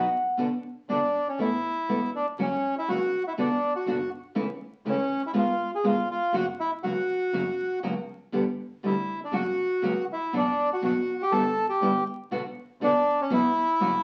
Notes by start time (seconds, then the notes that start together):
Already playing: F#5
0.37 B1 B2 D3 B3 D4 F#4
0.89 F#1 B2 D3 B3 D4 F#4
1.29 C#4
1.38 A1 E3 A3 B3 E4
1.89 E1 E3 A3 B3 E4
2.16 D4
2.38 F#1 C#3 F#3 A#3 C#4 F#4
2.78 E4
2.88 C#2 C#3 F#3 A#3 C#4 F#4
3.28 E4
3.38 B1 B2 D3 B3 D4 F#4
3.76 F#4
3.86 F#1 B2 D3 B3 D4 F#4
4.35 C#2 C#3 E3 A3 C#4 E4
4.86 C#2 C#3 E3 A3 C#4 E4
5.27 E4
5.33 C#2 C#3 G#3 B3 F4 G#4
5.38 F4
5.75 G#4
5.84 G#1 C#3 G#3 B3 F4 G#4
6.11 F4
6.32 F#1 C#3 F#3 A#3 C#4 F#4
6.60 E4
6.83 C#2 C#3 F#3 A#3 C#4 F#4
7.33 F#1 C#3 F#3 A#3 C#4 F#4
7.83 C#2 C#3 F#3 A#3 C#4 F#4
8.32 G1 B2 D3 G3 B3 G4
8.83 D2 B2 D3 G3 B3 E4 G4
9.24 D4
9.31 F#1 C#3 F#3 A#3 C#4 F#4
9.82 C#2 C#3 F#3 A#3 C#4 F#4
10.13 E4
10.33 F#1 B2 F#3 B3 D4 F#4
10.73 F#4
10.82 F#1 B2 F#3 B3 D4 F#4
11.22 G4
11.32 G1 G3 B3 E4 A4
11.69 G4
11.82 G1 G3 B3 E4
12.31 B1 B2 D3 B3 D4 F#4
12.81 F#1 B2 D3 B3 D4 F#4
13.21 C#4
13.30 F#1 B2 F#3 B3 C#4 E4 F#4
13.80 F#1 C#3 F#3 A#3 C#4 F#4